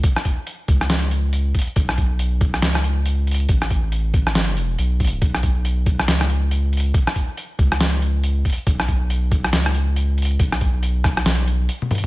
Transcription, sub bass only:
X:1
M:4/4
L:1/8
Q:"Swing 16ths" 1/4=139
K:Amix
V:1 name="Sub bass" clef=bass
z3 C,,4 z | B,,,4 C,,4 | A,,,6 B,,,2 | B,,,4 C,,4 |
z3 C,,4 z | B,,,4 C,,4 | B,,,4 B,,,2 z2 |]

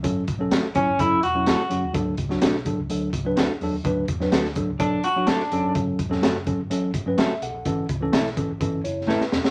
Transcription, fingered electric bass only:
X:1
M:4/4
L:1/16
Q:1/4=126
K:D
V:1 name="Fingered electric bass" clef=bass
F,,,2 B,,,2 A,,,3 G,,, F,,,2 E,,,3 z F,,, _E,, | D,,2 C,,2 B,,,3 C,, D,,2 C,,2 D,, z E,, _E,, | D,,2 E,,2 D,,3 C,, B,,,2 A,,,3 z F,,, G,,, | F,,,2 E,,,2 F,,,3 G,,, A,,,2 G,,,2 A,,, z B,,, _B,,, |
A,,,2 C,,2 B,,,3 A,,, G,,,2 F,,,3 z E,,, ^G,,, |]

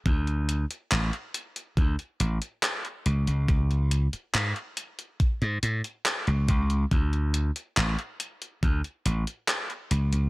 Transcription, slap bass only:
X:1
M:4/4
L:1/16
Q:1/4=70
K:Dlyd
V:1 name="Slap bass" clef=bass
D,,3 z A,,, z3 D,, z A,,, z3 C,, C,, | C,,3 z G,, z4 G,, A,, z2 C,, z2 | D,,3 z A,,, z3 D,, z A,,, z3 C,, C,, |]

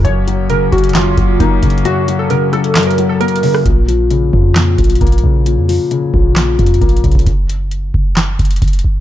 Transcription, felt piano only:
X:1
M:4/4
L:1/8
Q:1/4=133
K:Bbm
V:1 name="Felt piano" clef=bass
G,, G, D, G, G,, G, B, D, | G,, G, D, G, G,, G, B, D, | B,, F, D, F, B,, F, B, D, | B,, F, D, F, B,, F, B, D, |
z8 |]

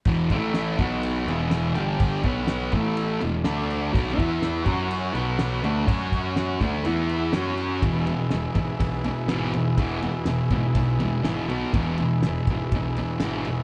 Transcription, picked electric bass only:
X:1
M:4/4
L:1/8
Q:1/4=123
K:F#dor
V:1 name="Picked electric bass" clef=bass
E,,, A,,,2 B,,,2 E,,,2 =G,,,- | =G,,, B,,,2 A,,,2 E,,, =D,,2 | B,,, E,,2 F,,2 B,,,2 =D,, | F,,3 =D,, E,,2 F,,2 |
[K:E] E,,,2 E,,, G,,, B,,,2 G,,,2 | E,,,2 E,,, G,,, B,,,2 G,,, B,,, | E,,,2 E,,, G,,, B,,,2 G,,,2 |]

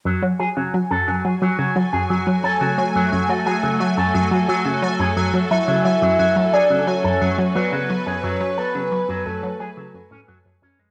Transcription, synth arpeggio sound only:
X:1
M:4/4
L:1/16
Q:1/4=88
K:F#m
V:1 name="Synth arpeggio sound" clef=bass
F,, F, F, C, F, F,, F,, F, F, C, F, F,, F,, F, F, C, | F, F,, F,, F, F, C, F, F,, F,, F, F, C, F, F,, F,, F, | F, C, F, F,, F,, F, F, C, F, F,, F,, F, F, C, F, F,, | F,, F, F, C, F, F,, F,, F, F, C, F,, A,, F,, F,, F,, F,, |]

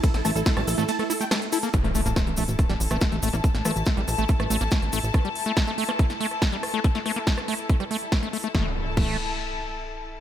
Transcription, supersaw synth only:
X:1
M:4/4
L:1/16
Q:1/4=141
K:none
V:1 name="Supersaw synth"
A A a A A a A A a A A g A z A A | z16 | z16 | z16 |
z16 | z16 |]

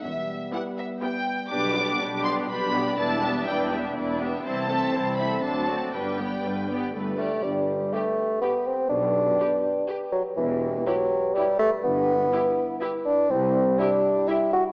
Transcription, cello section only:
X:1
M:3/4
L:1/8
Q:1/4=123
K:Em
V:1 name="Cello section" clef=bass
E,,2 z4 | [K:G] B,,2 B,,2 B,,2 | E,,2 E,,2 E,,2 | C,,2 C,,2 D,,2 |
G,,2 G,,2 G,,2 | G,,2 z4 | B,,2 z4 | E,,2 z4 |
G,,2 z4 | C,,2 z4 |]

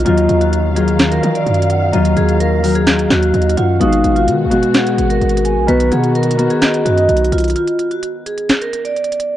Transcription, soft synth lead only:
X:1
M:4/4
L:1/8
Q:1/4=128
K:Ebm
V:1 name="Soft synth lead"
e2 z2 f3 g | z f z4 e g | f2 z2 g3 a | z ^f z2 ^d4 |
z8 |]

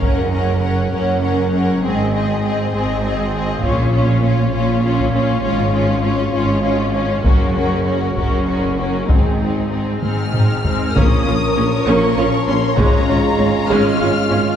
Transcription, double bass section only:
X:1
M:6/8
L:1/8
Q:3/8=66
K:Bbm
V:1 name="Double bass section" clef=bass
G,,,3 G,,,3 | A,,,3 A,,,3 | B,,,3 B,,,3 | A,,,3 A,,,3 |
G,,,3 G,,,3 | A,,,3 A,,,3 | B,,, B,,, B,,, B,,, B,,, B,,, | A,,, A,,, A,,, A,,, A,,, A,,, |]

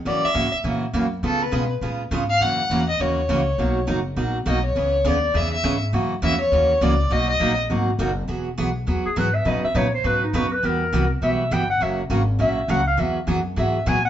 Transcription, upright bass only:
X:1
M:4/4
L:1/8
Q:"Swing" 1/4=204
K:B
V:1 name="Upright bass" clef=bass
F,, z G,, z A,,2 F,,2 | C,2 B,,2 A,,2 G,,2 | F,,2 E,,2 D,,2 C,,2 | B,,,2 F,,,2 A,,,2 B,,,2 |
C,,2 D,,2 E,,2 G,,2 | F,,2 E,,2 D,,2 C,,2 | B,,,2 A,,,2 G,,,2 F,,,2 | E,,,2 B,,,2 E,, z G,,2 |
B,, z A,,2 G,,2 F,,2 | E,,2 =C,,2 B,,,2 =G,,,2 | F,,,2 G,,,2 A,,,2 C,,2 | E,,2 F,,2 G,,2 A,,2 |]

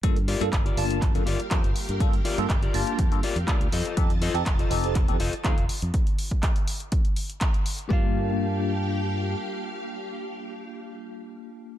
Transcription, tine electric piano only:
X:1
M:4/4
L:1/16
Q:1/4=122
K:Gm
V:1 name="Tine electric piano"
[B,DFA] z2 [B,DFA] z2 [B,DFa]3 [B,DFA] z2 [B,DFA] z3 | [B,DFA] z2 [B,DFA] z2 [B,DFa]3 [B,DFA] z2 [B,DFA] z3 | [CEGA] z2 [CEGA] z2 [CEGA]3 [CEGA] z2 [CEGA] z3 | z16 |
[B,DFa]16- | [B,DFa]16 |]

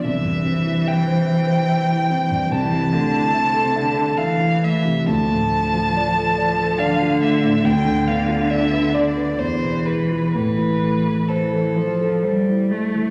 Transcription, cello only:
X:1
M:3/4
L:1/8
Q:1/4=70
K:C
V:1 name="Cello" clef=bass
E,6 | [K:Am] E, D, C, D, E,2 | F,4 D,2 | D,4 E,2 |
E,2 E, F, G, A, |]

